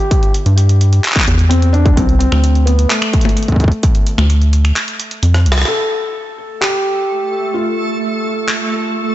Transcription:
Already playing: G4
0.11 kick, closed hi-hat
0.23 closed hi-hat
0.34 closed hi-hat
0.46 G2, closed hi-hat
0.58 closed hi-hat
0.69 closed hi-hat
0.81 closed hi-hat
0.93 closed hi-hat
1.04 clap, closed hi-hat
1.08 clap
1.12 kick, clap
1.16 clap, closed hi-hat
1.20 clap
1.24 E2, clap, closed hi-hat
1.39 closed hi-hat
1.49 C4, closed hi-hat
1.62 closed hi-hat
1.73 D4, closed hi-hat
1.86 kick, closed hi-hat
1.96 C2 C4, kick, closed hi-hat
2.09 closed hi-hat
2.19 C4, closed hi-hat
2.32 D2, finger snap
2.44 closed hi-hat
2.55 closed hi-hat
2.66 B3, closed hi-hat
2.79 closed hi-hat
2.89 A3, clap, closed hi-hat
3.02 finger snap, closed hi-hat
3.13 kick, closed hi-hat
3.21 closed hi-hat
3.25 closed hi-hat, high tom
3.29 closed hi-hat
3.31 closed hi-hat
3.37 closed hi-hat
3.43 closed hi-hat
3.48 kick, closed hi-hat
3.52 kick
3.56 kick, closed hi-hat
3.60 kick
3.64 kick
3.68 kick, closed hi-hat
3.83 kick, closed hi-hat
3.95 closed hi-hat
4.07 closed hi-hat
4.18 D2, finger snap, closed hi-hat, high tom
4.30 closed hi-hat
4.42 closed hi-hat
4.53 closed hi-hat
4.65 finger snap, closed hi-hat
4.76 clap, closed hi-hat
4.88 closed hi-hat
5.00 closed hi-hat
5.11 closed hi-hat
5.23 F2, closed hi-hat
5.34 cross-stick, closed hi-hat
5.46 C2, closed hi-hat
5.52 cross-stick
5.58 cross-stick, closed hi-hat
5.62 cross-stick
5.65 A4, cross-stick
5.70 A3 A4
6.61 G4, clap
7.54 F4
8.49 clap

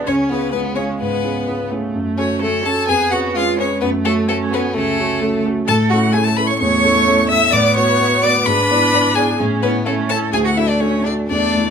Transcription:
0.04 C#2 C#4 C#5
0.30 B3 C#4 F4 G#4 B4
0.52 G#3 B3 C#4 F4 G#4 B4
0.75 C#4 F4 G#4 C#5
0.99 G#2 B3 B4
1.23 C#4 F4 G#4
1.47 B3 C#4 F4 G#4
1.70 A3 C#4 F4 G#4
1.94 F#2
2.18 C#4 F#4 A4 C#5
2.41 A3 C#4 F#4 A4
2.64 C#4 F#4 A4 A5
2.87 F2 B3 G#4 G#5
3.11 C#4 F#4 G#4 B4 F#5
3.34 G#3 C#4 F4 G#4 B4 F5
3.59 C#4 G#4 B4 C#5
3.81 F#2 A3 B3 B4
4.04 A3 C#4 F#4 A4
4.28 A3 C#4 F#4 A4
4.51 B3 C#4 F#4 A4 B4
4.74 C#2 A3 C#4 A4
4.99 C#4 F#4 A4
5.20 A3 C#4 F#4 A4
5.46 C#4 F#4 A4
5.65 A2 A3 A4 A5
5.89 C#4 E4 F#4 A4 F#5
6.13 C#4 E4 G#4 A4 G#5
6.24 A4 A5
6.36 C#4 E4 A4 B4 B5
6.47 C#5 C#6
6.58 E2 A3 C#5 C#6
6.84 C#4 E4 A4
7.07 C#4 E4 A4
7.28 C#4 E4 A4 E5 E6
7.51 A2 B3 D5 D6
7.75 B3 F#4 B4 C#5 C#6
8.00 B3 F#4 B4
8.22 B3 F#4 B4 D5 D6
8.46 G#2 D4 B4 B5
8.71 B3 E4 D5
8.93 B3 E4 D5
9.15 B3 E4 G#4 D5 G#5
9.39 A2 C#4
9.61 B3 C#4 E4 B4 C#5
9.85 A3 C#4 E4 A4 C#5
10.09 C#4 E4 A4 C#5 A5
10.32 D2 A3 G#4 G#5
10.44 F#4 F#5
10.55 D4 E4 F#4 A4 E5
10.68 D4 D5
10.80 C#4 D4 F#4 A4 C#5
11.04 D4 F#4 A4 D5
11.28 E2 A3 D4 D5
11.54 A3 E4 A4

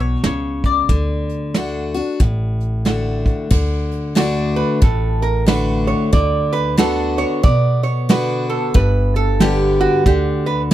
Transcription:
Already playing: B1 B2
0.00 C#5
0.24 C#2 C#3 C#5, snare, closed hi-hat
0.64 D5, kick, closed hi-hat
0.89 D2 D3, kick, closed hi-hat
1.29 closed hi-hat
1.54 D3 A3 D4 F#4, snare, closed hi-hat
1.94 D4 F#4, closed hi-hat
2.20 A1 A2, kick, closed hi-hat
2.60 closed hi-hat
2.85 D3 A3 D4 F#4, snare, closed hi-hat
3.26 kick, closed hi-hat
3.51 D2 D3, kick, crash
3.92 closed hi-hat
4.15 D3 A3 D4 F#4, snare, closed hi-hat
4.56 B4
4.82 A1 A2 A4, kick, closed hi-hat
5.22 A#4, closed hi-hat
5.46 D3 A3 D4 F#4 B4, snare, closed hi-hat
5.87 C#5
6.13 D2 D3 D5, kick, closed hi-hat
6.53 B4, closed hi-hat
6.78 D3 B3 D4 F#4 A4, snare, closed hi-hat
7.18 C#5
7.43 B2 B3 D5, kick, closed hi-hat
7.83 C#5, closed hi-hat
8.09 D3 B3 D4 F#4 B4, snare, closed hi-hat
8.50 A4
8.74 G1 G2 B4, kick, closed hi-hat
9.15 A4, closed hi-hat
9.40 D3 G3 B3 G4, snare, closed hi-hat
9.81 F#4
10.06 D2 D3 G4, kick, closed hi-hat
10.46 B4, closed hi-hat

